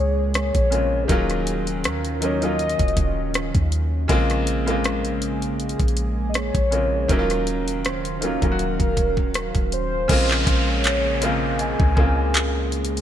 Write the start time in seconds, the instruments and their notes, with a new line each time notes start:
Already playing: 808-style bass C#2, analog synth pad A#2 G#3 A#3 G#4, grand piano C3 C#3 G#3 A#3 C4 F4 G4 G#4, soft synth lead C#5
0.34 soft synth lead C#5, cross-stick, closed hi-hat
0.55 808-style bass A#1, kick, closed hi-hat
0.70 grand piano C#3 G#3 A#3 C4, closed hi-hat
0.75 grand piano F4
1.04 grand piano D#3, soft synth lead G4
1.09 808-style bass D#1, analog synth pad D#3 F#3 C#4 F4, grand piano F#3 A#3 C#4 F4, soft synth lead G#4, kick, closed hi-hat
1.30 cross-stick, closed hi-hat
1.47 closed hi-hat
1.67 closed hi-hat
1.84 808-style bass D#2, soft synth lead A#4, cross-stick, closed hi-hat
2.05 closed hi-hat
2.20 grand piano D#3 F#3 A#3 C#4, soft synth lead C#5, closed hi-hat
2.25 grand piano D#4
2.41 grand piano D#3 F#3 A#3 C#4, soft synth lead D#5, closed hi-hat
2.45 grand piano F4
2.59 closed hi-hat
2.69 closed hi-hat
2.79 808-style bass D#1, kick, closed hi-hat
2.88 closed hi-hat
2.97 808-style bass D#1, kick, closed hi-hat
3.34 cross-stick, closed hi-hat
3.55 808-style bass D#2, kick, closed hi-hat
3.72 closed hi-hat
4.08 808-style bass A#1, grand piano C#3 G#3 A#3 C4, analog synth pad C#3 G#3 A#3 G#4, kick, closed hi-hat
4.12 grand piano F4
4.30 cross-stick, closed hi-hat
4.47 closed hi-hat
4.66 grand piano C#3 G#3 A#3 C4, closed hi-hat
4.70 grand piano F4
4.84 cross-stick, closed hi-hat
5.05 closed hi-hat
5.22 closed hi-hat
5.42 closed hi-hat
5.60 closed hi-hat
5.69 closed hi-hat
5.80 808-style bass A#1, kick, closed hi-hat
5.88 closed hi-hat
5.97 closed hi-hat
6.29 soft synth lead D#5
6.34 soft synth lead C#5, cross-stick, closed hi-hat
6.55 808-style bass A#1, kick, closed hi-hat
6.71 grand piano C#3 G#3 A#3 C4, closed hi-hat
6.75 grand piano F4
7.08 808-style bass D#1, grand piano D#3 F#3 A#3 C#4, analog synth pad D#3 F#3 C#4 F5, soft synth lead A#4, kick, closed hi-hat
7.12 grand piano E4
7.19 grand piano F4
7.30 cross-stick, closed hi-hat
7.47 closed hi-hat
7.68 closed hi-hat
7.85 soft synth lead C5, cross-stick, closed hi-hat
8.05 closed hi-hat
8.21 grand piano D#3 F#3 A#3 C#4, soft synth lead A#4, closed hi-hat
8.25 grand piano F4
8.41 808-style bass D#1, grand piano D#3 F#3 A#3 C#4, kick, closed hi-hat
8.45 grand piano F4
8.52 grand piano F#4
8.59 closed hi-hat
8.80 808-style bass D#1, kick, closed hi-hat
8.97 kick, closed hi-hat
9.17 kick
9.34 cross-stick, closed hi-hat
9.55 808-style bass D#1, kick, closed hi-hat
9.72 soft synth lead C5, closed hi-hat
10.08 808-style bass A#1, grand piano C#3 G#3 A#3 C4, analog synth pad C#3 G#3 A#3 G#4, kick, closed hi-hat, crash, downlifter
10.12 grand piano F4
10.31 clap
10.46 808-style bass A#1, celesta F5, kick, closed hi-hat
10.69 soft synth lead C#5
10.84 clap, closed hi-hat
11.21 grand piano C#3 G#3 A#3 C4, soft synth lead F5, closed hi-hat
11.25 grand piano F4
11.59 celesta D#5, soft synth lead G#5, closed hi-hat
11.80 808-style bass C#2, kick
11.95 grand piano C#3 G#3 A#3 C4, kick
12.00 grand piano F4
12.35 clap, closed hi-hat
12.72 closed hi-hat
12.85 closed hi-hat
12.97 closed hi-hat